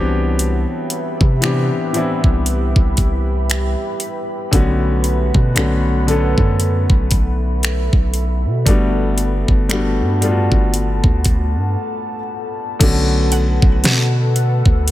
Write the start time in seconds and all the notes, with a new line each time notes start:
Already playing: C2 E3 B3 C4 D4 G4 B4 E5 B5
0.39 closed hi-hat
0.90 closed hi-hat
1.21 C3, kick
1.41 E3 B3 C4 D4 G4, finger snap, closed hi-hat
1.93 E3 B3 C4 D4 E4, closed hi-hat
2.24 C2, kick
2.46 closed hi-hat
2.76 C2, kick
2.97 kick, closed hi-hat
3.50 finger snap, closed hi-hat
4.00 closed hi-hat
4.51 B1 D3 A3 B3 C#4 F#4 A4 B4 F#5, kick, closed hi-hat
5.04 closed hi-hat
5.34 B2, kick
5.55 B1 D3 A3 B3 C#4 F#4, finger snap, closed hi-hat
6.07 D3 A3 B3 C#4, closed hi-hat
6.11 A4
6.38 F#2, kick
6.60 E5, closed hi-hat
6.90 B1, kick
7.11 kick, closed hi-hat
7.63 finger snap, closed hi-hat
7.93 B1, kick
8.14 closed hi-hat
8.45 B2
8.65 G1 G3 A3 B3 D4 F#4 F#5 A5, kick, closed hi-hat
9.18 closed hi-hat
9.48 G1, kick
9.69 G3 A3 B3 D4 F#4, finger snap, closed hi-hat
10.01 G2
10.21 G3 A3 B3 D4 F4, closed hi-hat
10.31 F#4
10.52 G1, kick
10.74 closed hi-hat
11.04 D2, kick
11.24 kick, closed hi-hat
11.56 G2
12.79 B1 D3 A3 B3 C#4 F#4 A4 B4 F#5 B5, kick, closed hi-hat, crash
13.32 F#5, closed hi-hat
13.62 B1, kick
13.84 B2, snare, closed hi-hat
14.36 closed hi-hat
14.66 D2, kick
14.88 closed hi-hat